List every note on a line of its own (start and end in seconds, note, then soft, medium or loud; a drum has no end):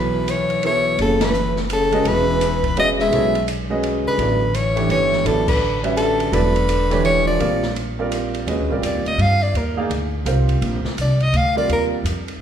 0.00 0.95 B1 medium
0.00 0.28 E3 medium
0.00 0.26 F#3 medium
0.00 0.26 B3 medium
0.00 0.26 E4 medium
0.00 0.26 A4 medium
0.00 0.32 B4 medium
0.00 0.26 C#5 medium
0.28 0.63 E3 medium
0.28 0.65 C#5 medium
0.28 hi-hat pedal medium
0.28 ride medium
0.50 ride soft
0.63 0.96 E3 medium
0.63 1.17 F#3 medium
0.63 1.17 B3 medium
0.63 1.18 E4 medium
0.63 1.18 A4 medium
0.63 1.18 C#5 medium
0.63 0.98 C#5 medium
0.63 ride medium
0.98 2.01 F#1 medium
0.98 1.24 C#3 medium
0.98 1.26 A4 medium
0.98 ride medium
1.21 1.57 E3 medium
1.21 1.58 B4 medium
1.21 snare medium
1.21 ride medium
1.34 hi-hat pedal medium
1.56 snare soft
1.70 2.09 C#3 medium
1.70 2.09 A4 medium
1.70 hi-hat pedal soft
1.70 ride medium
1.92 2.38 G#3 medium
1.92 2.38 C#4 medium
1.92 2.39 F#4 medium
1.92 2.39 B4 medium
1.92 2.39 D#5 medium
1.92 ride medium
2.05 3.08 E1 medium
2.05 2.77 E3 medium
2.05 2.78 B4 loud
2.05 ride medium
2.41 hi-hat pedal medium
2.41 ride medium
2.63 kick medium
2.63 ride soft
2.77 2.88 F#3 medium
2.77 3.30 G#3 medium
2.77 3.30 C#4 medium
2.77 3.31 F#4 medium
2.77 3.31 B4 medium
2.77 2.89 D#5 loud
2.77 3.31 E5 medium
2.77 ride medium
2.99 3.45 G#3 medium
2.99 3.45 E5 loud
2.99 snare soft
3.11 4.01 B1 medium
3.11 3.32 F#3 medium
3.11 3.32 B3 medium
3.11 3.33 E4 medium
3.11 3.33 A4 medium
3.11 3.33 C#5 medium
3.11 ride medium
3.35 ride soft
3.48 hi-hat pedal medium
3.48 ride medium
3.70 4.16 G#3 medium
3.70 4.16 C#4 medium
3.70 4.17 F#4 medium
3.70 4.17 B4 medium
3.70 4.17 D#5 medium
3.83 ride medium
4.05 4.55 D3 medium
4.05 4.57 B4 medium
4.05 muted upright bass stroke soft
4.18 4.86 A1 medium
4.18 4.39 F#3 medium
4.18 4.39 B3 medium
4.18 4.40 E4 medium
4.18 4.40 A4 medium
4.18 4.40 D5 medium
4.18 ride medium
4.53 4.90 E3 medium
4.53 4.91 C#5 medium
4.53 hi-hat pedal medium
4.53 ride medium
4.76 5.23 E3 medium
4.76 5.23 A3 medium
4.76 5.23 D4 medium
4.76 5.23 G4 medium
4.76 5.24 C#5 medium
4.76 ride soft
4.89 5.23 G1 medium
4.89 5.26 E3 medium
4.89 5.28 C#5 medium
4.89 ride medium
5.13 snare soft
5.24 6.28 A1 medium
5.24 5.45 D3 medium
5.24 5.46 F#3 medium
5.24 5.46 B3 medium
5.24 5.46 E4 medium
5.24 5.47 A4 medium
5.24 5.48 A4 medium
5.24 5.47 D5 medium
5.24 ride medium
5.46 5.80 D3 medium
5.46 5.82 B4 medium
5.46 kick medium
5.46 crash medium
5.83 6.30 G3 medium
5.83 6.30 C#4 medium
5.83 6.30 F#4 medium
5.83 6.31 B4 medium
5.83 6.31 E5 medium
5.83 ride soft
5.96 6.32 D3 medium
5.96 6.35 A4 loud
5.96 hi-hat pedal medium
5.96 ride medium
6.20 ride medium
6.32 7.36 E1 medium
6.32 7.03 D3 medium
6.32 6.53 F#3 medium
6.32 6.53 B3 medium
6.32 6.54 E4 medium
6.32 6.54 A4 medium
6.32 7.05 B4 loud
6.32 6.54 D5 medium
6.32 ride medium
6.56 ride soft
6.69 hi-hat pedal medium
6.69 ride medium
6.90 7.37 E3 medium
6.90 7.37 A3 medium
6.90 7.38 D4 medium
6.90 7.38 G4 medium
6.90 7.38 C#5 medium
6.90 snare soft
6.90 ride soft
7.03 7.25 E3 medium
7.03 7.26 C#5 loud
7.03 ride medium
7.25 7.72 F3 medium
7.25 7.73 D5 medium
7.40 8.43 A#1 medium
7.40 7.60 G3 medium
7.40 7.61 C4 medium
7.40 7.61 F4 medium
7.40 7.61 A#4 medium
7.40 7.61 D5 medium
7.40 ride medium
7.63 snare medium
7.76 ride medium
7.99 8.45 G3 medium
7.99 8.45 C4 medium
7.99 8.45 F4 medium
7.99 8.46 A#4 medium
7.99 8.46 D5 medium
8.12 hi-hat pedal medium
8.12 ride medium
8.34 ride medium
8.46 8.59 D#2 medium
8.46 8.68 G#3 medium
8.46 8.68 C#4 medium
8.46 8.68 F#4 medium
8.46 8.68 B4 medium
8.46 8.69 D#5 medium
8.46 ride medium
8.59 8.70 D2 medium
8.70 8.82 A#1 medium
8.70 9.47 G3 medium
8.70 9.48 C4 medium
8.70 9.48 F4 medium
8.70 9.48 A#4 medium
8.70 9.48 D5 medium
8.82 8.94 F2 medium
8.82 9.06 D5 medium
8.82 hi-hat pedal medium
8.82 ride medium
8.94 9.05 D#2 medium
9.05 9.17 D2 medium
9.05 9.23 D#5 medium
9.05 ride soft
9.18 9.53 G2 medium
9.18 9.44 F5 loud
9.18 ride medium
9.43 9.59 D5 medium
9.54 9.89 D#2 medium
9.54 9.79 A#4 medium
9.54 ride medium
9.77 9.89 A#3 medium
9.77 9.90 D#4 medium
9.77 9.90 G#4 medium
9.77 9.90 D5 medium
9.77 9.90 F5 medium
9.89 10.25 D2 medium
9.89 ride medium
10.25 10.61 C2 medium
10.25 10.80 G3 medium
10.25 10.80 C4 medium
10.25 10.80 F4 medium
10.25 10.80 A#4 medium
10.25 10.81 C5 medium
10.25 hi-hat pedal medium
10.25 ride medium
10.49 ride soft
10.61 10.83 A#1 medium
10.61 ride medium
10.85 muted upright bass stroke soft
10.85 snare medium
10.97 11.32 C2 medium
10.97 hi-hat pedal medium
10.97 ride medium
11.01 11.24 D5 medium
11.20 11.38 D#5 medium
11.20 ride soft
11.33 11.68 D2 medium
11.33 11.57 F5 loud
11.33 ride medium
11.56 12.03 G3 medium
11.56 12.03 C4 medium
11.56 12.03 F4 medium
11.56 12.03 A#4 medium
11.56 12.03 D5 medium
11.56 11.69 D5 medium
11.69 12.03 D#2 medium
11.69 11.85 A#4 medium
11.69 ride medium
12.04 12.39 F2 medium
12.04 hi-hat pedal medium
12.04 ride medium
12.28 ride soft